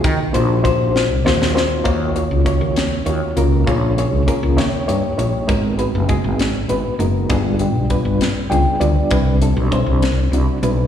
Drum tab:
HH |x-x-x-------|x-x-x-x-x-x-|x-x-x-x-x-x-|x-x-x-x-x-x-|
SD |------o-ooo-|------o-----|------o-----|------o-----|
BD |o---o-------|o---o-------|o---o-------|o---o-------|

HH |x-x-x-x-x-x-|x-x-x-x-x-x-|
SD |------o-----|------o-----|
BD |o---o-------|o---o-------|